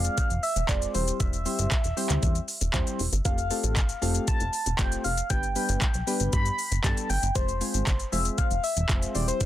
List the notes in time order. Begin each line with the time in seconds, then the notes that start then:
Already playing: G#3 C4 F4 G#4 D5 F5
0.05 closed hi-hat, shaker
0.18 kick, closed hi-hat, shaker
0.30 F1, closed hi-hat, shaker
0.43 E5, open hi-hat, shaker
0.56 E1, closed hi-hat, shaker
0.69 F1 G#3 C4 F4 G#4 C5 D5, kick, clap, closed hi-hat, shaker
0.82 closed hi-hat, shaker
0.94 E1 G3 C4 E4 G4 C5, open hi-hat, shaker
1.08 closed hi-hat, shaker
1.20 E1 E5, kick, closed hi-hat, shaker
1.33 closed hi-hat, shaker
1.45 G3 C4 E4 G4 C5, open hi-hat, shaker
1.59 G1, closed hi-hat, shaker
1.71 kick, clap, closed hi-hat, shaker
1.84 E1, closed hi-hat, shaker
1.97 G3 C4 E4 G4 C5, open hi-hat, shaker
2.10 D2, clap, closed hi-hat, shaker
2.23 E2, kick, closed hi-hat, shaker
2.35 closed hi-hat, shaker
2.48 open hi-hat, shaker
2.61 E1, closed hi-hat, shaker
2.74 E2 G3 C4 E4 G4 C5, kick, clap, closed hi-hat, shaker
2.87 closed hi-hat, shaker
2.99 E1, open hi-hat, shaker
3.12 G1, closed hi-hat, shaker
3.25 F1 A3 C4 F4 G4 A4 F5, kick, closed hi-hat, shaker
3.38 closed hi-hat, shaker
3.50 A3 C4 F4 G4 A4, open hi-hat, shaker
3.64 A1, closed hi-hat, shaker
3.76 G1, kick, clap, closed hi-hat, shaker
3.89 closed hi-hat, shaker
4.02 F1 A3 C4 F4 G4 A4, open hi-hat, shaker
4.15 closed hi-hat, shaker
4.28 A5, kick, closed hi-hat, shaker
4.40 F1, closed hi-hat, shaker
4.53 open hi-hat, shaker
4.66 E1, closed hi-hat, shaker
4.79 F1 A3 C4 F4 G4 C5 G5, kick, clap, closed hi-hat, shaker
4.92 closed hi-hat, shaker
5.04 F1 F5, open hi-hat, shaker
5.18 closed hi-hat, shaker
5.30 G1 G3 B3 D4 G4 B4 G5, kick, closed hi-hat, shaker
5.43 closed hi-hat, shaker
5.56 G3 B3 D4 G4 B4, open hi-hat, shaker
5.69 G1, closed hi-hat, shaker
5.82 kick, clap, closed hi-hat, shaker
5.94 B1, closed hi-hat, shaker
6.07 G3 B3 D4 G4 B4, open hi-hat, shaker
6.20 G1, closed hi-hat, shaker
6.33 G2 B5, kick, closed hi-hat, shaker
6.46 closed hi-hat, shaker
6.58 open hi-hat, shaker
6.71 G1, closed hi-hat, shaker
6.84 G2 G3 B3 D4 G4 A4 A5, kick, clap, closed hi-hat, shaker
6.97 closed hi-hat, shaker
7.10 G1 G5, open hi-hat, shaker
7.23 G1, closed hi-hat, shaker
7.35 F1 G#3 C4 F4 G#4 C5, kick, closed hi-hat, shaker
7.49 closed hi-hat, shaker
7.61 G#3 C4 F4 G#4 C5, open hi-hat, shaker
7.74 G#1, closed hi-hat, shaker
7.87 G1, kick, clap, closed hi-hat, shaker
8.00 closed hi-hat, shaker
8.12 F1 G#3 C4 F4 G#4 C5 E5, open hi-hat, shaker
8.25 closed hi-hat, shaker
8.38 F5, kick, closed hi-hat, shaker
8.51 F1, closed hi-hat, shaker
8.64 E5, open hi-hat, shaker
8.76 E1, closed hi-hat, shaker
8.89 F1 G#3 C4 F4 G#4 C5, kick, clap, closed hi-hat, shaker
9.02 closed hi-hat, shaker
9.15 E1 G3 C4 E4 G4 C5 D5, open hi-hat, shaker
9.28 C5, closed hi-hat, shaker
9.41 E1, kick, closed hi-hat, shaker